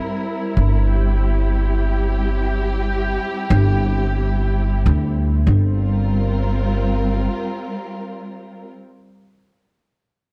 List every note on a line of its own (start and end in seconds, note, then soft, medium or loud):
0.00 5.46 G3 medium
0.00 5.47 C4 medium
0.00 5.47 E4 medium
0.00 0.93 A#4 medium
0.57 3.16 G1 loud
0.89 5.51 G4 medium
3.50 4.83 G1 loud
4.86 5.45 D2 loud
5.47 7.27 G1 loud
5.47 8.68 G3 medium
5.58 8.68 C4 medium
5.68 8.68 F4 medium
5.76 8.68 A#4 medium